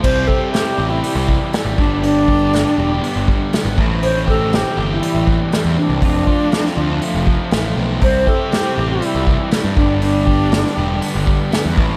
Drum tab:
CC |x---------------|----------------|----------------|----------------|
HH |----o---o---o---|o---o---o---o---|o---o---o---o---|o---o---o---o---|
SD |----o-------o---|----o-------o---|----o-------o---|----oo------o---|
BD |o-o-------o---o-|--o-------o---o-|--o-------o-----|o-o-------o-----|

CC |----------------|----------------|
HH |o---o---o---o---|o---o---o---o---|
SD |----o-------o---|----oo------o---|
BD |o-o-------o---o-|--o-------o---o-|